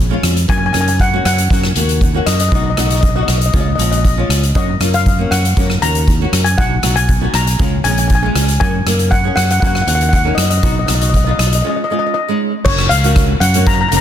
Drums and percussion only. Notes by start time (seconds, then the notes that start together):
0.23 cross-stick, closed hi-hat
0.37 closed hi-hat
0.49 kick, closed hi-hat
0.74 cross-stick, closed hi-hat
0.88 closed hi-hat
1.00 kick, closed hi-hat
1.25 cross-stick, closed hi-hat
1.38 closed hi-hat
1.50 kick, closed hi-hat
1.64 cross-stick
1.76 closed hi-hat
1.89 closed hi-hat
2.01 kick, closed hi-hat
2.27 cross-stick, closed hi-hat
2.40 closed hi-hat
2.52 kick, closed hi-hat
2.77 cross-stick, closed hi-hat
2.90 closed hi-hat
3.03 kick, closed hi-hat
3.28 cross-stick, closed hi-hat
3.41 closed hi-hat
3.53 kick, closed hi-hat
3.79 closed hi-hat
3.92 closed hi-hat
4.05 kick, closed hi-hat
4.30 cross-stick, closed hi-hat
4.43 closed hi-hat
4.55 kick, closed hi-hat
4.81 cross-stick, closed hi-hat
4.94 closed hi-hat
5.06 kick, closed hi-hat
5.32 cross-stick, closed hi-hat
5.45 closed hi-hat
5.57 kick, closed hi-hat
5.70 cross-stick
5.82 closed hi-hat
5.95 closed hi-hat
6.08 kick, closed hi-hat
6.33 cross-stick, closed hi-hat
6.46 closed hi-hat
6.58 kick, closed hi-hat
6.83 cross-stick, closed hi-hat
6.97 closed hi-hat
7.09 kick, closed hi-hat
7.34 cross-stick, closed hi-hat
7.47 closed hi-hat
7.59 kick, closed hi-hat
7.85 closed hi-hat
7.98 closed hi-hat
8.10 kick, closed hi-hat
8.36 cross-stick, closed hi-hat
8.48 closed hi-hat
8.61 kick, closed hi-hat
8.87 cross-stick, closed hi-hat
8.99 closed hi-hat
9.12 kick, closed hi-hat
9.37 cross-stick, closed hi-hat
9.50 closed hi-hat
9.62 kick, closed hi-hat
9.75 cross-stick
9.88 closed hi-hat
10.01 closed hi-hat
10.13 kick, closed hi-hat
10.38 cross-stick, closed hi-hat
10.51 closed hi-hat
10.63 kick, closed hi-hat
10.88 cross-stick, closed hi-hat
11.01 closed hi-hat
11.14 kick, closed hi-hat
11.39 cross-stick, closed hi-hat
11.53 closed hi-hat
12.65 kick, crash
12.78 cross-stick
12.91 closed hi-hat
13.04 closed hi-hat
13.16 kick, cross-stick, closed hi-hat
13.41 closed hi-hat
13.54 closed hi-hat
13.67 kick, closed hi-hat
13.92 closed hi-hat